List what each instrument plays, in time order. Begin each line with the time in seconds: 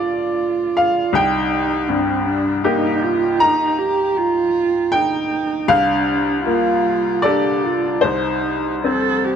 Already playing: upright piano A3 D4 A4 D5 F5, cello F4
0.77 upright piano F5
1.13 upright piano C2 G5, cello D#4
1.89 upright piano G2, cello C4
2.26 cello D4
2.64 upright piano A#3 D#4 G4, cello D#4
3.02 cello F4
3.39 cello D#4, upright piano A#5
3.79 cello G4
4.17 cello F4
4.92 cello D#4, upright piano G5
5.68 upright piano C2 F5, cello D4
6.46 upright piano A#3, cello F4
7.22 upright piano D4 A4 D5, cello G4
7.64 cello F4
8.01 upright piano C2 C5, cello D#4
8.84 upright piano C4, cello A4
9.25 cello G4